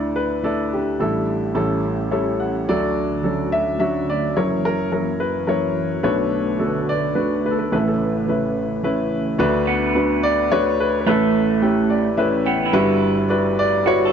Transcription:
0.00 0.96 D2 medium
0.00 0.96 D3 medium
0.00 0.43 A3 medium
0.00 0.44 D4 medium
0.00 0.44 E4 medium
0.00 0.19 A4 medium
0.00 0.44 D5 medium
0.16 0.45 B4 medium
0.43 0.91 A3 medium
0.43 0.74 D4 medium
0.43 0.91 E4 medium
0.43 0.70 A4 medium
0.43 0.92 D5 medium
0.73 0.99 D4 soft
0.73 1.81 G4 medium
1.00 1.52 A1 medium
1.00 1.52 A2 medium
1.00 1.47 G3 medium
1.00 1.47 D4 medium
1.00 1.48 E4 medium
1.00 1.48 A4 medium
1.55 2.63 A1 medium
1.55 2.63 A2 medium
1.55 2.03 G3 medium
1.55 2.03 C#4 medium
1.55 2.03 E4 medium
1.55 2.03 A4 medium
2.11 2.59 G3 medium
2.11 2.59 C#4 medium
2.11 2.59 E4 medium
2.11 2.59 A4 medium
2.11 2.38 C#5 medium
2.40 2.66 F#5 medium
2.67 4.32 D2 medium
2.67 4.34 D3 medium
2.67 4.32 D3 medium
2.67 3.15 F#3 medium
2.67 4.34 A3 medium
2.67 3.16 A3 medium
2.67 3.16 D4 medium
2.67 4.34 F#4 medium
2.67 3.49 F#4 medium
2.67 3.16 A4 medium
2.67 3.55 D5 medium
3.23 3.71 F#3 medium
3.23 3.71 C#4 soft
3.23 3.71 D4 medium
3.23 3.71 A4 medium
3.52 3.78 E5 medium
3.79 4.27 F#3 medium
3.79 4.27 C#4 medium
3.79 4.27 D4 medium
3.79 4.27 F#4 medium
3.79 4.09 E5 medium
4.10 4.38 D5 medium
4.36 6.00 F#1 medium
4.36 6.00 F#2 medium
4.36 6.02 E3 medium
4.36 4.83 F#3 medium
4.36 6.02 A#3 medium
4.36 4.84 C#4 medium
4.36 4.84 E4 medium
4.36 7.68 F#4 medium
4.36 4.64 A#4 medium
4.36 4.65 C#5 medium
4.65 4.91 A#4 medium
4.92 5.39 F#3 medium
4.92 5.39 C#4 medium
4.92 5.40 E4 medium
4.92 5.39 A#4 medium
5.20 5.49 B4 medium
5.47 5.95 F#3 medium
5.47 5.95 C#4 medium
5.47 5.95 E4 medium
5.47 5.95 A#4 medium
5.47 5.87 C#5 medium
6.03 7.67 B1 medium
6.03 7.68 B2 medium
6.03 7.70 D3 medium
6.03 6.51 A3 medium
6.03 9.36 A3 medium
6.03 6.51 D4 medium
6.03 6.51 F#4 medium
6.03 6.58 A4 medium
6.03 6.51 B4 medium
6.03 7.70 B4 medium
6.03 6.84 C#5 medium
6.59 7.07 A3 medium
6.59 7.07 D4 medium
6.59 7.07 F#4 medium
6.59 7.07 A4 medium
6.89 7.46 D5 medium
7.15 7.63 A3 medium
7.15 7.63 D4 medium
7.15 7.63 F#4 medium
7.15 7.44 B4 medium
7.46 7.52 B4 medium
7.51 7.58 A4 medium
7.59 7.71 B4 medium
7.71 9.36 A1 medium
7.71 9.35 A2 medium
7.71 9.37 C#3 medium
7.71 8.19 A3 medium
7.71 7.74 C#4 medium
7.71 9.38 E4 medium
7.71 8.19 E4 medium
7.71 7.80 A4 medium
7.71 9.37 B4 medium
7.71 7.77 B4 medium
7.76 7.87 C#4 soft
7.88 8.27 C#4 soft
7.88 9.08 A4 medium
8.28 8.75 A3 medium
8.28 8.75 C#4 medium
8.28 8.75 E4 soft
8.28 8.76 B4 medium
8.83 9.31 A3 medium
8.83 9.31 C#4 medium
8.83 9.31 E4 medium
8.83 9.31 B4 medium
9.38 11.02 D2 medium
9.38 11.03 D3 medium
9.38 9.86 A3 medium
9.38 9.86 D4 medium
9.38 9.86 F#4 medium
9.38 9.87 B4 loud
9.67 10.69 B3 medium
9.95 10.42 A3 medium
9.95 10.42 D4 medium
9.95 10.42 F#4 medium
9.95 10.42 B4 medium
10.23 10.52 D5 loud
10.52 10.98 A3 medium
10.52 10.99 D4 medium
10.52 10.99 F#4 medium
10.52 10.79 B4 medium
10.52 10.80 C#5 loud
10.80 10.99 B4 medium
11.01 11.06 B4 medium
11.06 12.70 A1 medium
11.06 12.70 A2 medium
11.06 11.54 A3 medium
11.06 12.08 A3 medium
11.06 11.09 C#4 medium
11.06 11.10 E4 medium
11.06 12.15 A4 medium
11.06 11.54 B4 medium
11.11 11.61 C#4 medium
11.11 11.61 E4 medium
11.62 12.09 A3 medium
11.62 12.09 C#4 medium
11.62 12.10 E4 medium
11.62 12.09 G4 medium
11.90 12.16 D5 medium
12.17 12.65 A3 medium
12.17 12.65 C#4 medium
12.17 12.65 E4 medium
12.17 12.65 B4 medium
12.17 12.44 E5 medium
12.46 12.98 B3 medium
12.46 12.72 G5 medium
12.66 13.15 E4 medium
12.73 14.12 G1 medium
12.73 14.12 G2 medium
12.73 13.21 G3 loud
12.73 13.21 E4 medium
12.73 13.21 F#4 medium
12.73 13.21 B4 loud
13.29 13.77 G3 medium
13.29 13.76 E4 medium
13.29 13.76 F#4 medium
13.29 13.56 B4 medium
13.29 13.57 D5 medium
13.59 13.84 D5 loud
13.86 14.12 G3 medium
13.86 14.12 E4 medium
13.86 14.12 F#4 soft
13.86 14.12 F#4 medium
13.86 14.12 B4 medium
13.86 14.12 C#5 loud
14.05 14.12 A4 medium

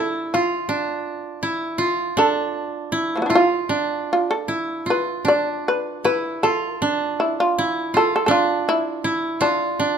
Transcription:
0.00 0.68 D4 medium
0.00 0.40 E4 medium
0.00 0.30 A4 medium
0.34 1.75 F4 medium
0.34 1.49 F4 medium
0.69 2.17 D4 medium
1.43 1.84 E4 medium
1.78 2.98 F4 medium
2.17 3.69 D4 medium
2.17 3.28 A4 medium
2.92 3.36 E4 medium
3.16 3.26 F3 soft
3.16 3.22 A3 soft
3.22 3.29 B3 soft
3.22 3.35 D4 soft
3.30 3.42 E4 soft
3.30 4.54 F4 medium
3.35 4.07 F4 medium
3.69 5.24 D4 medium
4.13 4.29 F4 medium
4.31 4.84 A4 medium
4.48 4.92 E4 medium
4.86 6.10 F4 medium
4.90 5.26 B4 medium
5.25 6.81 D4 medium
5.25 5.64 D5 medium
5.68 6.03 B4 medium
6.04 6.50 E4 medium
6.04 6.41 B4 medium
6.43 7.64 F4 medium
6.43 7.16 A4 medium
6.82 8.28 D4 medium
7.20 7.37 E4 medium
7.40 7.91 F4 medium
7.58 8.00 E4 medium
7.94 9.10 F4 medium
7.94 8.13 A4 medium
8.16 8.25 A4 medium
8.26 9.79 D4 medium
8.26 8.31 A4 medium
8.31 8.65 F4 medium
8.69 9.39 E4 medium
9.04 9.47 E4 medium
9.41 9.98 D4 medium
9.41 9.98 F4 medium
9.79 9.98 D4 medium

